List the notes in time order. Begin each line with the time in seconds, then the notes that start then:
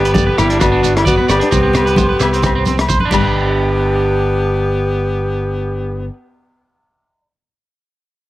Already playing: G1 B3 G4
0.05 B4, closed hi-hat, shekere
0.14 A3 D5, kick, closed hi-hat, high conga, shekere
0.27 B4
0.37 G1 G3 B3 E4 G4, cross-stick, closed hi-hat, low agogo, shekere
0.50 D4, closed hi-hat, shekere
0.59 B3 D4 F#4, kick, cross-stick, closed hi-hat, muted conga, high conga, low agogo, shekere
0.72 D4
0.83 D4, closed hi-hat, shekere
0.96 G3 E4, cross-stick, closed hi-hat, low agogo, shekere
1.05 B3 F#4 D5, kick, closed hi-hat, high conga, shekere
1.18 B3 B4
1.28 G1 B3 G4 D5, cross-stick, closed hi-hat, muted conga, low agogo, shekere
1.39 D4, closed hi-hat
1.51 C2 C4, kick, closed hi-hat, muted conga, shekere
1.63 C4
1.73 B3 C4, cross-stick, closed hi-hat, muted conga, low conga, low agogo, shekere
1.86 B4, closed hi-hat, shekere
1.96 A3 C5, kick, closed hi-hat, high conga, shekere
2.09 B4
2.20 C2 B3 E4, cross-stick, closed hi-hat, low agogo, shekere
2.33 C4, closed hi-hat, shekere
2.42 C4, kick, cross-stick, closed hi-hat, muted conga, low conga, shekere
2.46 low agogo
2.55 C4
2.65 C4, closed hi-hat, high conga, shekere
2.77 cross-stick, closed hi-hat, shekere
2.81 low agogo
2.88 C5, kick, closed hi-hat, high conga, shekere
3.00 B4, high conga
3.05 D4
3.10 G1 G3 B3 G4, kick, crash, muted conga, low agogo, shekere
3.17 B4